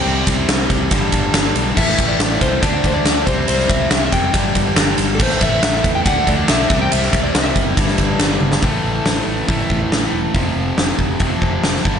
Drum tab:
CC |----------------|x---------------|----------------|x---------------|
RD |--x-x-x-x-x-x-x-|--x-x-x-x-x-x-x-|x-x-x-x-x-x-x-x-|--x-x-x-x-x-x-x-|
HH |----------------|----------------|----------------|----------------|
SD |----o-------o---|-o--o-------o---|-o--o-------o---|-o--o-------o---|
T1 |----------------|----------------|----------------|----------------|
BD |--o---o-o-o-----|o-o---o-o-o---o-|--o---o-o-o-----|o-o---o-o-o---o-|

CC |----------------|----------------|----------------|
RD |x-x-x-x-x-x-x---|----------------|----------------|
HH |----------------|o---o---o---o---|o---o---o---o---|
SD |-o--o----o--o--o|----o-------o---|----o-------oo--|
T1 |--------------o-|----------------|----------------|
BD |--o---o-o-o-----|o-------o-o-----|o-----o-o-o---o-|